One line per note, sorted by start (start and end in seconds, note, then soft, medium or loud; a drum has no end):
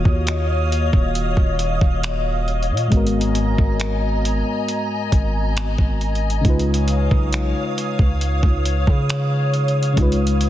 0.00 2.86 D#3 medium
0.00 2.87 A#3 medium
0.00 2.88 F4 medium
0.00 2.89 F#4 medium
0.00 2.88 C#5 medium
0.00 2.93 C#5 medium
0.00 6.41 D#5 medium
0.00 2.88 F5 medium
0.00 2.88 D#6 medium
0.05 0.90 D#2 medium
0.05 kick medium
0.27 finger snap loud
0.27 closed hi-hat medium
0.72 closed hi-hat medium
0.93 1.36 D#1 medium
0.93 kick loud
1.15 closed hi-hat medium
1.37 1.80 D#1 loud
1.37 kick medium
1.59 closed hi-hat medium
1.81 2.72 D#1 loud
1.81 kick medium
2.03 finger snap loud
2.03 closed hi-hat medium
2.48 closed hi-hat soft
2.63 closed hi-hat soft
2.70 2.91 A#2 loud
2.77 closed hi-hat soft
2.88 6.39 G#2 medium
2.88 6.40 G#3 medium
2.88 kick loud
2.88 closed hi-hat medium
2.92 3.55 G#1 loud
2.92 6.41 B3 medium
2.92 6.42 F#4 medium
2.92 6.41 G#5 medium
2.92 6.41 A#5 medium
2.97 6.43 A#4 medium
3.07 closed hi-hat medium
3.21 closed hi-hat medium
3.35 closed hi-hat medium
3.58 4.43 G#1 medium
3.58 kick medium
3.80 finger snap loud
3.80 closed hi-hat medium
4.25 closed hi-hat medium
4.68 closed hi-hat medium
5.12 5.76 G#1 loud
5.12 kick medium
5.12 closed hi-hat medium
5.57 finger snap loud
5.57 closed hi-hat medium
5.78 6.42 G#1 medium
5.78 kick medium
6.01 closed hi-hat soft
6.15 closed hi-hat soft
6.30 closed hi-hat soft
6.41 7.08 C#2 loud
6.41 9.92 C#3 medium
6.41 9.93 G#3 medium
6.41 kick loud
6.41 closed hi-hat soft
6.45 9.94 D#4 medium
6.45 9.95 F4 medium
6.45 10.49 C#5 medium
6.45 10.49 F5 medium
6.45 10.49 D#6 medium
6.50 9.96 B4 medium
6.59 closed hi-hat medium
6.74 closed hi-hat medium
6.88 closed hi-hat medium
7.11 7.54 B1 medium
7.11 kick medium
7.33 finger snap loud
7.33 closed hi-hat medium
7.78 closed hi-hat medium
7.99 8.42 C#2 medium
7.99 kick loud
8.21 closed hi-hat medium
8.43 8.86 C#2 loud
8.43 kick medium
8.65 closed hi-hat medium
8.87 9.94 C#3 loud
8.87 kick medium
9.09 finger snap loud
9.09 closed hi-hat medium
9.54 closed hi-hat soft
9.68 closed hi-hat soft
9.83 closed hi-hat soft
9.93 10.49 C#3 medium
9.93 10.49 G#3 medium
9.93 kick loud
9.93 closed hi-hat soft
9.98 10.49 C#2 loud
9.98 10.49 D#4 medium
9.98 10.49 F4 medium
10.02 10.49 B4 medium
10.12 closed hi-hat medium
10.27 closed hi-hat medium
10.41 closed hi-hat medium